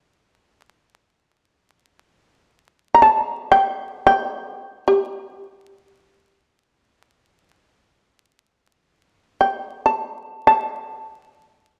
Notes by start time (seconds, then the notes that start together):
Already playing: D5
2.94 A#5
3.02 A5
3.52 G5
4.07 G5
4.88 G4
9.41 G5
9.86 A5
10.47 A5